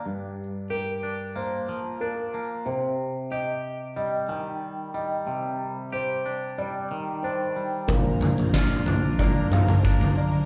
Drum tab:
SD |----------------|----------------|----------------|----o-----------|
T2 |----------------|----------------|----------------|----------oo----|
FT |----------------|----------------|----------------|o-oo--o-o-oo-o--|
BD |----------------|----------------|----------------|o---o---o---o---|